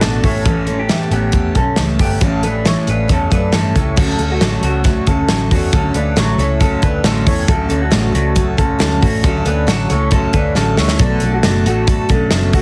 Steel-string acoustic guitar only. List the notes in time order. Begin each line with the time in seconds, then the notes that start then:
0.01 B2 A3 D4 F#4 A4
0.24 G3 A3 C#4 A4
0.45 A2 E3 G3 A3 C#4 A4
0.67 G3 A3 C#4 A4
0.89 A2 E3 G3 A3 C#4 A4
1.11 G3 A3 C#4 A4
1.32 G3 A3 C#4 A4
1.55 G3 A3 C#4 A4
1.78 A2 E3 G3 A3 C#4 A4
1.99 G3 A3 C#4 A4
2.22 A2 E3 G3 A3 C#4 A4
2.43 G3 A3 C#4 A4
2.65 A2 E3 G3 A3 C#4 A4
2.87 G3 A3 C#4 A4
3.08 G3 A3 C#4 A4
3.30 G3 A3 C#4 A4
3.52 A2 E3 G3 A3 C#4 A4
3.75 G3 A3 C#4 A4
3.96 D3 F#3 A3 C#4 A4
4.19 A3 C#4 A4
4.40 D3 F#3 A3 C#4 A4
4.62 A3 C#4 A4
4.85 F#3 A3 C#4 A4
5.07 A3 C#4 A4
5.29 D3 F#3 A3 C#4 A4
5.51 A3 C#4 A4
5.72 D3 F#3 A3 C#4 A4
5.94 A3 C#4 A4
6.16 D3 F#3 A3 C#4 A4
6.38 A3 C#4 A4
6.60 F#3 A3 C#4 A4
6.83 A3 C#4 A4
7.04 D3 F#3 A3 C#4 A4
7.26 A3 C#4 A4
7.47 D3 F#3 A3 C#4 A4
7.69 A3 C#4 A4
7.91 D3 F#3 A3 C#4 A4
8.12 A3 C#4 A4
8.35 F#3 A3 C#4 A4
8.57 A3 C#4 A4
8.79 D3 F#3 A3 C#4 A4
9.01 A3 C#4 A4
9.22 D3 F#3 A3 C#4 A4
9.45 A3 C#4 A4
9.67 D3 F#3 A3 C#4 A4
9.89 A3 C#4 A4
10.11 F#3 A3 C#4 A4
10.34 A3 C#4 A4
10.56 D3 F#3 A3 C#4 A4
10.78 A3 C#4 A4
10.99 B2 F#3 A3 D4 A4
11.21 A3 D4 A4
11.44 B2 F#3 A3 D4 A4
11.66 A3 D4 A4
11.87 F#3 A3 D4 A4
12.09 A3 D4 A4
12.31 B2 F#3 A3 D4 A4
12.53 A3 D4 A4